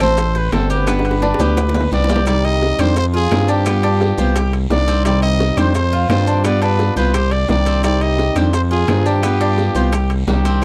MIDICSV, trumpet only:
0, 0, Header, 1, 2, 480
1, 0, Start_track
1, 0, Key_signature, -3, "minor"
1, 0, Tempo, 348230
1, 1206, Time_signature, 4, 2, 24, 8
1, 14672, End_track
2, 0, Start_track
2, 0, Title_t, "Trumpet"
2, 0, Program_c, 0, 56
2, 31, Note_on_c, 0, 72, 102
2, 518, Note_on_c, 0, 71, 88
2, 539, Note_off_c, 0, 72, 0
2, 729, Note_off_c, 0, 71, 0
2, 737, Note_on_c, 0, 69, 89
2, 956, Note_off_c, 0, 69, 0
2, 983, Note_on_c, 0, 71, 86
2, 2599, Note_off_c, 0, 71, 0
2, 2663, Note_on_c, 0, 74, 102
2, 3101, Note_off_c, 0, 74, 0
2, 3136, Note_on_c, 0, 74, 107
2, 3373, Note_on_c, 0, 75, 118
2, 3393, Note_off_c, 0, 74, 0
2, 3868, Note_on_c, 0, 72, 105
2, 3888, Note_off_c, 0, 75, 0
2, 4096, Note_off_c, 0, 72, 0
2, 4111, Note_on_c, 0, 72, 103
2, 4213, Note_off_c, 0, 72, 0
2, 4353, Note_on_c, 0, 68, 102
2, 4833, Note_on_c, 0, 67, 96
2, 4853, Note_off_c, 0, 68, 0
2, 6258, Note_off_c, 0, 67, 0
2, 6501, Note_on_c, 0, 74, 114
2, 6939, Note_off_c, 0, 74, 0
2, 6979, Note_on_c, 0, 74, 101
2, 7195, Note_off_c, 0, 74, 0
2, 7206, Note_on_c, 0, 75, 112
2, 7693, Note_on_c, 0, 72, 99
2, 7714, Note_off_c, 0, 75, 0
2, 7924, Note_off_c, 0, 72, 0
2, 7932, Note_on_c, 0, 72, 102
2, 8374, Note_off_c, 0, 72, 0
2, 8414, Note_on_c, 0, 72, 98
2, 8856, Note_off_c, 0, 72, 0
2, 8892, Note_on_c, 0, 74, 96
2, 9111, Note_off_c, 0, 74, 0
2, 9143, Note_on_c, 0, 71, 101
2, 9580, Note_off_c, 0, 71, 0
2, 9614, Note_on_c, 0, 71, 95
2, 9849, Note_on_c, 0, 72, 99
2, 9870, Note_off_c, 0, 71, 0
2, 10084, Note_on_c, 0, 74, 98
2, 10105, Note_off_c, 0, 72, 0
2, 10324, Note_off_c, 0, 74, 0
2, 10340, Note_on_c, 0, 74, 103
2, 10778, Note_off_c, 0, 74, 0
2, 10812, Note_on_c, 0, 74, 107
2, 11053, Note_on_c, 0, 75, 104
2, 11073, Note_off_c, 0, 74, 0
2, 11528, Note_off_c, 0, 75, 0
2, 11776, Note_on_c, 0, 72, 89
2, 11881, Note_off_c, 0, 72, 0
2, 12014, Note_on_c, 0, 68, 95
2, 12498, Note_on_c, 0, 67, 97
2, 12518, Note_off_c, 0, 68, 0
2, 13932, Note_off_c, 0, 67, 0
2, 14177, Note_on_c, 0, 67, 86
2, 14672, Note_off_c, 0, 67, 0
2, 14672, End_track
0, 0, End_of_file